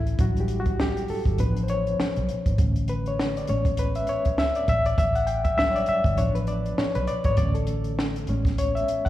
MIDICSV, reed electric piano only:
0, 0, Header, 1, 2, 480
1, 0, Start_track
1, 0, Key_signature, 3, "major"
1, 0, Tempo, 598922
1, 156, Time_signature, 4, 2, 24, 8
1, 7287, End_track
2, 0, Start_track
2, 0, Title_t, "Reed electric piano"
2, 0, Program_c, 0, 4
2, 0, Note_on_c, 0, 64, 81
2, 56, Control_c, 0, 64, 127
2, 146, Note_on_c, 0, 54, 52
2, 152, Note_on_c, 0, 55, 47
2, 157, Note_on_c, 0, 62, 53
2, 165, Note_on_c, 0, 66, 85
2, 168, Note_off_c, 0, 64, 0
2, 323, Note_on_c, 0, 67, 66
2, 325, Note_off_c, 0, 66, 0
2, 481, Note_on_c, 0, 66, 73
2, 484, Note_off_c, 0, 67, 0
2, 485, Note_off_c, 0, 54, 0
2, 488, Note_off_c, 0, 55, 0
2, 490, Note_off_c, 0, 62, 0
2, 643, Note_off_c, 0, 66, 0
2, 651, Note_on_c, 0, 67, 81
2, 881, Note_on_c, 0, 69, 84
2, 890, Note_off_c, 0, 67, 0
2, 1102, Note_off_c, 0, 69, 0
2, 1110, Note_on_c, 0, 53, 54
2, 1115, Note_on_c, 0, 59, 52
2, 1117, Note_on_c, 0, 62, 57
2, 1122, Note_on_c, 0, 71, 87
2, 1124, Control_c, 0, 64, 0
2, 1279, Control_c, 0, 64, 127
2, 1299, Note_off_c, 0, 71, 0
2, 1308, Note_on_c, 0, 72, 57
2, 1356, Note_off_c, 0, 72, 0
2, 1360, Note_on_c, 0, 73, 84
2, 1806, Note_off_c, 0, 73, 0
2, 2041, Note_off_c, 0, 53, 0
2, 2043, Note_off_c, 0, 59, 0
2, 2044, Note_off_c, 0, 62, 0
2, 2073, Note_on_c, 0, 50, 50
2, 2078, Note_on_c, 0, 57, 43
2, 2084, Note_on_c, 0, 61, 53
2, 2088, Control_c, 0, 64, 0
2, 2207, Control_c, 0, 64, 127
2, 2320, Note_on_c, 0, 71, 75
2, 2461, Note_off_c, 0, 71, 0
2, 2465, Note_on_c, 0, 73, 77
2, 2684, Note_off_c, 0, 73, 0
2, 2703, Note_on_c, 0, 74, 73
2, 2762, Note_off_c, 0, 50, 0
2, 2765, Note_off_c, 0, 57, 0
2, 2768, Note_off_c, 0, 61, 0
2, 2788, Note_on_c, 0, 56, 56
2, 2793, Note_on_c, 0, 59, 47
2, 2796, Note_on_c, 0, 61, 56
2, 2801, Note_on_c, 0, 73, 76
2, 2803, Note_off_c, 0, 74, 0
2, 2807, Control_c, 0, 64, 0
2, 2929, Control_c, 0, 64, 127
2, 3022, Note_off_c, 0, 73, 0
2, 3038, Note_on_c, 0, 71, 91
2, 3166, Note_off_c, 0, 71, 0
2, 3171, Note_on_c, 0, 76, 84
2, 3267, Note_off_c, 0, 76, 0
2, 3279, Note_on_c, 0, 73, 87
2, 3480, Note_off_c, 0, 56, 0
2, 3482, Note_off_c, 0, 59, 0
2, 3484, Note_off_c, 0, 61, 0
2, 3501, Note_off_c, 0, 73, 0
2, 3515, Note_on_c, 0, 76, 89
2, 3656, Note_on_c, 0, 74, 86
2, 3659, Note_off_c, 0, 76, 0
2, 3749, Note_off_c, 0, 74, 0
2, 3759, Note_on_c, 0, 76, 98
2, 3765, Control_c, 0, 64, 0
2, 3887, Note_off_c, 0, 76, 0
2, 3896, Note_on_c, 0, 74, 98
2, 3919, Control_c, 0, 64, 127
2, 3993, Note_on_c, 0, 76, 99
2, 3999, Note_off_c, 0, 74, 0
2, 4131, Note_on_c, 0, 78, 85
2, 4137, Note_off_c, 0, 76, 0
2, 4222, Note_on_c, 0, 79, 88
2, 4237, Note_off_c, 0, 78, 0
2, 4358, Note_off_c, 0, 79, 0
2, 4364, Note_on_c, 0, 76, 84
2, 4461, Note_off_c, 0, 76, 0
2, 4464, Note_on_c, 0, 54, 57
2, 4468, Note_on_c, 0, 55, 50
2, 4471, Note_on_c, 0, 76, 94
2, 4473, Note_on_c, 0, 62, 63
2, 4574, Note_on_c, 0, 73, 67
2, 4581, Note_off_c, 0, 76, 0
2, 4612, Note_off_c, 0, 73, 0
2, 4613, Note_on_c, 0, 74, 91
2, 4718, Note_off_c, 0, 74, 0
2, 4718, Note_on_c, 0, 76, 88
2, 4803, Note_off_c, 0, 54, 0
2, 4805, Note_off_c, 0, 55, 0
2, 4808, Note_off_c, 0, 62, 0
2, 4946, Note_on_c, 0, 53, 51
2, 4951, Note_on_c, 0, 59, 51
2, 4952, Note_on_c, 0, 73, 85
2, 4957, Note_on_c, 0, 62, 65
2, 4964, Note_off_c, 0, 76, 0
2, 4965, Control_c, 0, 64, 0
2, 5083, Note_off_c, 0, 73, 0
2, 5090, Note_on_c, 0, 71, 78
2, 5115, Control_c, 0, 64, 127
2, 5192, Note_on_c, 0, 74, 91
2, 5196, Note_off_c, 0, 71, 0
2, 5417, Note_off_c, 0, 74, 0
2, 5435, Note_on_c, 0, 73, 84
2, 5565, Note_off_c, 0, 73, 0
2, 5573, Note_on_c, 0, 71, 83
2, 5667, Note_off_c, 0, 71, 0
2, 5670, Note_on_c, 0, 74, 89
2, 5811, Note_on_c, 0, 73, 95
2, 5816, Note_off_c, 0, 74, 0
2, 5879, Note_off_c, 0, 53, 0
2, 5881, Note_off_c, 0, 59, 0
2, 5884, Note_off_c, 0, 62, 0
2, 5907, Note_on_c, 0, 50, 53
2, 5908, Note_on_c, 0, 57, 51
2, 5910, Note_on_c, 0, 74, 86
2, 5913, Note_on_c, 0, 61, 56
2, 5916, Note_off_c, 0, 73, 0
2, 5924, Control_c, 0, 64, 0
2, 6042, Note_off_c, 0, 74, 0
2, 6047, Note_on_c, 0, 69, 69
2, 6069, Control_c, 0, 64, 127
2, 6499, Note_off_c, 0, 69, 0
2, 6599, Note_off_c, 0, 50, 0
2, 6600, Note_off_c, 0, 57, 0
2, 6602, Note_off_c, 0, 61, 0
2, 6637, Note_on_c, 0, 56, 54
2, 6642, Note_on_c, 0, 59, 51
2, 6644, Control_c, 0, 64, 0
2, 6646, Note_on_c, 0, 61, 59
2, 6776, Control_c, 0, 64, 127
2, 6881, Note_on_c, 0, 73, 93
2, 7008, Note_off_c, 0, 73, 0
2, 7014, Note_on_c, 0, 76, 81
2, 7254, Note_on_c, 0, 78, 87
2, 7262, Note_off_c, 0, 76, 0
2, 7287, Note_off_c, 0, 56, 0
2, 7287, Note_off_c, 0, 59, 0
2, 7287, Note_off_c, 0, 61, 0
2, 7287, Note_off_c, 0, 78, 0
2, 7287, End_track
0, 0, End_of_file